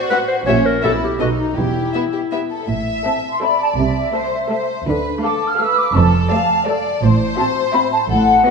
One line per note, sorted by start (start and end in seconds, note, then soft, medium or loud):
0.00 0.47 F#4 medium
0.09 0.18 C4 soft
0.09 0.18 F#4 soft
0.09 0.18 B4 medium
0.09 0.19 F#5 soft
0.28 0.36 C5 medium
0.46 0.76 A#1 medium
0.46 0.76 A#2 medium
0.46 0.54 C#4 soft
0.46 0.83 C#4 medium
0.46 0.55 G4 soft
0.46 0.68 C#5 medium
0.46 0.56 E5 soft
0.66 0.84 A#4 medium
0.83 1.13 B1 medium
0.83 1.13 B2 medium
0.83 0.92 B3 soft
0.83 1.20 E4 medium
0.83 0.92 G4 soft
0.83 0.92 A4 medium
0.83 0.91 E5 soft
1.03 1.21 G4 medium
1.20 1.50 B1 soft
1.20 1.50 B2 medium
1.20 1.28 B3 soft
1.20 1.56 D#4 soft
1.20 1.30 F#4 medium
1.20 1.28 A4 soft
1.20 1.28 D#5 soft
1.38 1.58 D#4 medium
1.56 1.87 E1 medium
1.56 1.87 E2 medium
1.56 2.50 E4 medium
1.56 1.91 G4 medium
1.94 2.03 B3 soft
1.94 2.03 E4 soft
1.94 2.03 G4 soft
1.94 2.02 E5 soft
2.13 2.20 G4 soft
2.32 2.40 B3 soft
2.32 2.40 G4 soft
2.32 2.39 B4 soft
2.32 2.40 E5 soft
2.51 2.69 A4 soft
2.69 2.98 A1 medium
2.69 2.98 A2 medium
2.69 3.38 E5 medium
3.05 3.33 C4 soft
3.05 3.33 A4 soft
3.05 3.33 E5 soft
3.05 3.12 A5 medium
3.30 3.42 C6 medium
3.41 3.69 C4 soft
3.41 3.69 A4 soft
3.41 4.14 D5 medium
3.41 3.70 E5 soft
3.41 3.60 B5 medium
3.60 3.66 A5 medium
3.78 4.07 C2 medium
3.78 4.07 C3 medium
3.78 4.67 E5 medium
4.14 4.41 A3 soft
4.14 4.41 A4 soft
4.14 4.50 C5 soft
4.14 4.42 E5 soft
4.51 4.78 A3 soft
4.51 4.78 A4 soft
4.51 4.87 C5 medium
4.51 4.79 E5 soft
4.87 5.15 D2 medium
4.87 5.15 D3 medium
4.87 5.23 B4 medium
5.23 5.50 A3 medium
5.23 5.59 A4 soft
5.23 5.50 A4 soft
5.23 5.50 F5 medium
5.23 5.45 D6 medium
5.47 5.59 F6 medium
5.59 5.87 A3 medium
5.59 5.87 A4 medium
5.59 5.95 B4 medium
5.59 5.86 F5 medium
5.59 5.77 E6 medium
5.77 5.95 D6 medium
5.95 6.23 F1 medium
5.95 6.23 F2 medium
5.95 6.31 A4 medium
5.95 6.84 A5 medium
6.31 6.57 A3 medium
6.31 6.57 A4 medium
6.31 6.58 D5 medium
6.31 6.67 F5 medium
6.66 6.94 A3 medium
6.66 6.94 A4 medium
6.66 6.93 D5 medium
6.66 7.01 D5 medium
7.02 7.30 A1 medium
7.02 7.30 A2 medium
7.02 8.10 C5 medium
7.38 7.65 C4 medium
7.38 7.65 F#4 medium
7.38 7.64 E5 medium
7.38 7.44 A5 medium
7.63 7.74 C6 medium
7.73 8.00 C4 medium
7.73 8.00 F#4 medium
7.73 8.01 E5 medium
7.73 7.79 B5 medium
7.92 7.98 A5 medium
8.09 8.37 A1 medium
8.09 8.37 A2 medium
8.09 8.45 A4 medium
8.09 8.51 F#5 medium
8.44 8.51 B3 medium
8.44 8.51 F#4 medium
8.44 8.51 B4 medium
8.44 8.51 D#5 medium